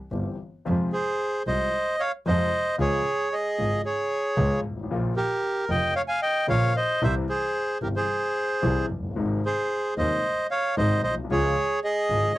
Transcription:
0.11 G1 G2 E3 G3 C4 G4
0.65 F2 C3 F3 G#3 F4
0.93 G#4 C5
1.46 C2 C3 F3 G#3 F4 C5 D#5
2.00 C#5 F5
2.26 F2 C3 F3 G#3 F4 C5 D#5
2.78 C#2 C#3 F3 G#3 F4 G#4 C#5
3.32 G#4 D#5
3.58 G#1 G#2 C#3 F3 G#3 F4
3.85 G#4 C#5
4.37 C#2 C#3 F3 G#3 F4
4.64 G#1
4.70 G1
4.77 G#1
4.83 A1
4.90 A#1 A#2 C#3 F3 A#3 F4
5.16 G4 A#4
5.68 F1 F2 C#3 F3 A#3 F4 D#5 G5
5.96 C#5 F5
6.08 F5 G#5
6.22 D#5 G5
6.47 A#1 A#2 C#3 F3 A#3 F4 C#5 F5
6.77 C5 D#5
7.02 C2 C3 E3 G3 E4 C5 E5
7.29 G#4 C5
7.81 G1 G2 C3 E3 G3 E4 G4 A#4
7.96 G#4 C5
8.62 C2 C3 E3 G3 E4
8.90 F#1
8.97 F1
9.03 F#1
9.10 G1
9.16 G#1 G#2 C3 D#3 G#3 D#4
9.46 G#4 C5
9.96 D#1 D#2 C3 D#3 G#3 D#4 C5 D#5
10.51 C#5 F5
10.77 G#1 G#2 C3 D#3 G#3 D#4 C5 D#5
11.03 B1 C5 D#5
11.10 A#1
11.17 B1
11.24 C2
11.30 C#2 C#3 F3 G#3 F4 G#4 C#5
11.84 G#4 D#5
12.10 G#1 G#2 C#3 F3 G#3 F4

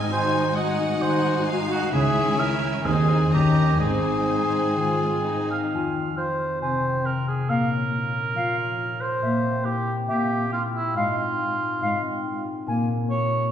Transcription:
Already playing: G#2 D#3 C4 D#4 D#5 G#5
0.10 G#2 D#4 F#4 C5 G#5
0.33 D#4
0.55 D#4 F#4 D#5 F#5 G#5
0.78 D#4
1.00 D#3 D#4 F#4 C5 G#5
1.23 D#4
1.46 F#4 F5
1.69 D#4 F#4
1.92 C#2 C#3 C#4 E4 G#4 E5 G#5
2.15 C#4
2.38 E4 A#4
2.61 C#4
2.84 D#2 D#3 C4 D#4 G#4 C5 G#5
3.08 D#4 G#4
3.31 D#2 D#3 C#4 D#4 G4 D#5 A#5
3.56 D#4 A#4
3.79 G#1 G#2 C4 D#4 G#4 C5 G#5
4.04 C4
4.28 D#4
4.53 C4
4.76 D#3 F4
5.00 C4
5.25 D#4
5.50 C4 F5
5.74 F2 F4 G#5
5.95 C4
6.17 F4 C5
6.39 G#4
6.61 C3 C4 C5 G#5
6.83 C4
7.05 F4 A#4
7.26 G#4
7.48 A#2 A#3 A#4 F5
7.70 C#4
7.91 F4
8.13 A#4
8.34 F3 F4 F5
8.55 C#4
8.78 F4
9.00 A#4 C5
9.22 A#2 A#3 E5
9.43 C4
9.64 E4 G4
9.87 G4
10.08 A#2 A#3 G4 E5
10.30 C4
10.52 E4 F4
10.73 E4 G4
10.94 G#2 G#3 F4 F5
11.16 C4
11.38 F4
11.60 G#4
11.81 G#2 G#3 F5
12.02 C4
12.24 F4
12.45 G#4
12.67 A#2 A#3 G#5
12.89 A#3
13.10 F4 C#5
13.31 G#4

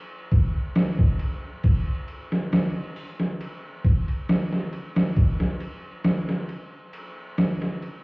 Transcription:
0.31 kick, ride
0.75 snare, ride
0.99 kick
1.19 ride
1.64 kick, ride
2.08 ride
2.32 snare
2.53 snare, ride
2.96 open hi-hat
3.20 snare
3.41 ride
3.85 kick, ride
4.08 ride
4.29 snare, ride
4.53 snare
4.73 ride
4.96 snare, ride
5.16 kick, ride
5.40 snare
5.60 ride
6.04 snare, ride
6.29 snare
6.49 ride
6.93 ride
7.38 snare, ride
7.62 snare
7.83 ride

